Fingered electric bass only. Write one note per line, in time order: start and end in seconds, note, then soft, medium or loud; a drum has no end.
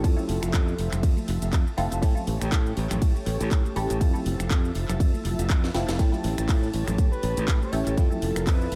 0.04 0.14 F2 loud
0.29 0.39 F1 medium
0.43 0.51 F1 medium
0.54 0.73 F2 loud
0.79 0.89 F1 medium
0.93 1.01 F1 loud
1.03 1.14 F2 medium
1.18 muted fingered electric bass stroke soft
1.28 1.39 F1 loud
1.42 1.50 F1 loud
1.53 1.63 F2 medium
1.78 1.88 F1 medium
1.92 2.00 F1 medium
2.02 2.13 A2 medium
2.27 2.38 A1 medium
2.41 2.49 A1 medium
2.52 2.71 A2 loud
2.77 2.87 A1 loud
2.91 2.99 A1 loud
3.02 3.12 A2 medium
3.27 3.37 A1 medium
3.41 3.48 A1 loud
3.51 3.62 A2 loud
3.76 3.86 A1 medium
3.90 3.98 A1 medium
4.01 4.11 F2 loud
4.26 4.36 F1 medium
4.40 4.48 F1 medium
4.50 4.70 F2 loud
4.75 4.86 F1 medium
4.89 4.97 F1 medium
5.00 5.10 F2 medium
5.14 muted fingered electric bass stroke soft
5.25 5.35 F1 medium
5.39 5.47 F1 medium
5.50 5.69 F2 medium
5.74 5.85 F1 medium
5.88 5.96 F1 medium
5.99 6.10 A2 loud
6.24 6.34 A1 medium
6.38 6.46 A1 medium
6.49 6.68 A2 loud
6.74 6.84 A1 loud
6.88 6.96 A1 medium
6.98 7.09 A2 medium
7.23 7.34 A1 medium
7.37 7.45 A1 loud
7.48 7.58 A2 loud
7.73 7.83 A1 medium
7.87 7.95 A1 medium
7.97 8.08 F2 loud
8.22 8.33 F1 loud
8.36 8.44 F1 loud
8.47 8.66 F2 loud
8.72 8.75 F1 loud